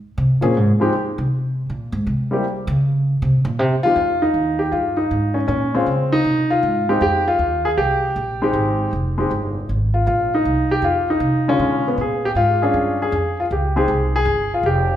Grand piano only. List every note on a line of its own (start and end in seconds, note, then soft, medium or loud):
0.41 0.53 F3 medium
0.41 0.54 A#3 medium
0.41 0.54 C4 medium
0.41 0.54 C#4 medium
0.41 0.54 G#4 medium
0.80 0.91 F3 medium
0.80 0.92 G#3 medium
0.80 0.92 C4 medium
0.80 0.92 D#4 medium
0.80 0.92 G4 medium
2.31 2.43 G3 medium
2.31 2.43 A#3 medium
2.31 2.44 C4 medium
2.31 2.44 E4 medium
2.31 2.44 G4 medium
3.83 3.96 F3 medium
3.83 3.96 G#3 medium
3.83 3.96 C4 medium
3.83 3.97 D#4 medium
3.83 4.23 F4 loud
3.83 3.97 G4 medium
4.22 4.61 D#4 medium
4.59 4.71 G4 medium
4.72 4.96 F4 medium
4.97 5.37 D#4 medium
5.34 5.46 C#4 medium
5.48 5.74 C#4 medium
5.74 5.86 G#3 medium
5.74 6.14 C4 medium
5.74 5.87 C#4 medium
5.74 5.87 F4 medium
6.12 6.52 D#4 loud
6.50 6.90 F4 loud
6.89 7.00 G#3 medium
6.89 7.01 C4 medium
6.89 7.01 D#4 medium
6.89 7.01 G4 medium
7.02 7.25 G4 loud
7.28 7.67 F4 loud
7.65 7.70 G#4 loud
7.78 8.42 G4 medium
8.42 8.90 G#3 medium
8.42 8.90 C4 medium
8.42 8.91 D#4 medium
8.42 8.91 G4 medium
9.18 9.29 G#3 medium
9.18 9.30 C4 medium
9.18 9.30 D#4 medium
9.18 9.31 G4 medium
9.94 10.05 F4 medium
10.07 10.33 F4 medium
10.34 10.69 D#4 medium
10.71 10.84 G4 medium
10.84 11.07 F4 medium
11.10 11.49 D#4 medium
11.48 11.97 D3 medium
11.48 11.96 G#3 medium
11.48 11.87 C#4 loud
11.48 11.97 F4 medium
11.88 11.99 B3 medium
12.01 12.26 G#4 medium
12.25 12.30 G4 medium
12.37 12.63 F4 loud
12.62 13.11 C#4 medium
12.62 13.11 D4 medium
12.62 13.11 F4 medium
12.62 13.01 G#4 medium
13.02 13.36 G#4 medium
13.40 13.45 F4 medium
13.52 13.76 G4 medium
13.76 13.88 G#3 medium
13.76 13.88 C4 medium
13.76 13.88 D#4 medium
13.76 13.88 G4 medium
13.76 14.14 G#4 medium
14.16 14.50 G#4 loud
14.54 14.65 F4 medium
14.66 14.96 G4 medium